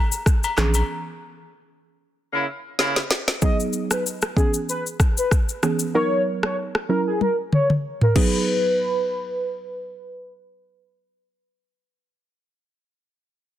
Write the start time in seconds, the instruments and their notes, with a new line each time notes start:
0.12 shaker
0.26 kick, cross-stick, shaker
0.43 high agogo, shaker
0.57 analog synth bass A#1, synth pluck E3 B3 C#4 G#4, cross-stick, clap, shaker
0.74 high agogo, shaker
2.33 horn section C#3 A#3 E4
2.79 horn section C#3 A#3 E4, snare
2.96 snare
3.11 snare
3.28 snare
3.42 synth pluck F#3 B3 D#4 G#4, soft synth lead D#5, kick, shaker
3.60 shaker
3.73 shaker
3.91 soft synth lead B4, cross-stick, shaker
4.06 shaker
4.22 cross-stick, shaker
4.37 synth pluck E3 B3 C#4 G#4, soft synth lead G#4, kick, shaker
4.54 shaker
4.69 soft synth lead B4, shaker
4.87 shaker
5.00 kick, cross-stick, shaker
5.17 soft synth lead B4, shaker
5.31 kick, cross-stick, shaker
5.49 shaker
5.63 synth pluck E3 B3 C#4 G#4, cross-stick, shaker
5.79 shaker
5.94 synth pluck F#3 B3 D#4 A#4, soft synth lead C#5
6.43 soft synth lead C#5, cross-stick
6.75 cross-stick
6.89 synth pluck F#3 C#4 E4 A#4, soft synth lead A#4
7.08 soft synth lead G#4
7.21 soft synth lead A#4, high tom
7.53 soft synth lead C#5, mid tom
7.70 mid tom
8.01 soft synth lead A#4, mid tom
8.15 synth pluck F#3 B3 D#4 G#4, soft synth lead B4, kick, crash